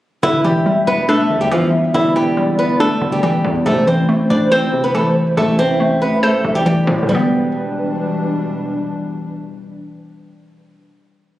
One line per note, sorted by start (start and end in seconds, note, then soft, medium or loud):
0.23 0.64 E1 loud
0.23 3.62 D3 medium
0.23 1.29 D3 medium
0.23 0.41 E3 medium
0.23 3.62 G3 medium
0.23 3.62 B3 medium
0.23 7.05 E4 loud
0.23 0.41 E4 medium
0.23 1.90 E5 loud
0.44 1.50 E3 medium
0.44 0.85 G3 medium
0.44 0.85 G4 medium
0.66 1.73 G3 medium
0.87 1.32 E1 loud
0.87 1.06 B3 medium
0.87 1.05 B4 medium
1.09 1.39 A3 medium
1.09 2.16 D4 medium
1.09 1.39 A4 medium
1.30 1.51 E2 loud
1.30 1.93 D3 medium
1.41 1.50 G3 medium
1.41 1.50 G4 medium
1.51 2.14 E3 loud
1.51 1.70 F3 medium
1.51 1.69 F4 medium
1.94 2.50 E1 loud
1.94 3.00 D3 medium
1.94 2.13 E3 medium
1.94 2.12 E4 medium
1.94 3.62 D5 loud
2.16 3.22 E3 medium
2.16 2.57 G3 medium
2.16 2.56 G4 medium
2.37 3.44 G3 medium
2.48 2.99 G1 loud
2.59 2.77 B3 medium
2.59 2.77 B4 medium
2.80 3.11 A3 medium
2.80 3.66 D4 medium
2.80 3.10 A4 loud
3.01 3.43 E1 loud
3.01 3.66 D3 medium
3.12 3.22 G3 medium
3.12 3.21 G4 medium
3.23 3.66 E3 loud
3.23 3.64 G3 medium
3.23 3.63 G4 medium
3.44 3.65 E2 loud
3.66 4.28 A1 loud
3.66 7.05 C3 medium
3.66 4.72 C3 medium
3.66 7.05 E3 medium
3.66 7.05 A3 medium
3.66 3.84 A3 medium
3.66 3.84 A4 medium
3.66 5.33 C5 loud
3.87 4.93 E3 medium
3.87 4.28 C4 medium
3.87 4.28 C5 medium
4.09 5.16 A3 medium
4.30 4.64 A1 loud
4.30 4.49 D4 medium
4.30 4.48 D5 medium
4.52 4.82 C4 medium
4.52 4.82 C5 loud
4.52 5.59 C5 medium
4.62 4.93 G1 loud
4.73 5.36 C3 medium
4.84 4.93 B3 medium
4.84 4.93 B4 medium
4.94 5.58 E3 medium
4.94 5.13 A3 medium
4.94 5.12 A4 medium
5.37 6.40 A1 loud
5.37 6.43 C3 medium
5.37 5.56 A3 medium
5.37 5.55 A4 medium
5.37 6.62 E5 loud
5.59 6.65 E3 medium
5.59 5.99 C4 medium
5.59 5.99 C5 medium
5.80 6.87 A3 medium
6.02 6.20 B3 medium
6.02 6.20 B4 medium
6.23 6.54 A3 medium
6.23 6.53 A4 medium
6.23 7.09 C5 medium
6.44 6.65 A1 loud
6.44 7.09 C3 medium
6.55 6.65 G3 medium
6.55 6.64 G4 medium
6.66 7.05 E3 medium
6.66 7.07 G3 medium
6.66 7.06 G4 medium
6.66 6.86 D5 medium
6.87 7.08 A2 loud
6.87 7.07 C5 medium
7.03 10.65 D3 medium
7.07 8.76 E1 loud
7.07 10.71 B2 medium
7.07 10.69 E3 medium
7.07 10.71 E3 medium
7.07 8.33 G3 medium
7.07 10.71 G3 medium
7.07 10.71 D4 loud
7.07 8.33 B4 loud
7.11 10.73 G3 medium
7.11 10.77 B3 medium